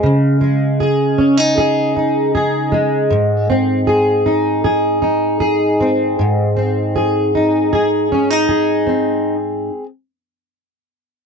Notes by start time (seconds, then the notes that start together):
Already playing: G#3 C4 G#4
0.03 C#3
0.41 G#3
0.80 G#4
1.18 C#4
1.37 D#4
1.58 G#4
1.96 D#4
2.35 G#4
2.72 G#3
3.10 G#2
3.50 C4
3.87 G#4
4.26 D#4
4.64 G#4
5.02 D#4
5.40 G#4
5.80 C4
6.19 G#2
6.57 C4
6.96 G#4
7.35 D#4
7.73 G#4
8.12 C#4
8.31 D#4
8.49 G#4
8.87 C4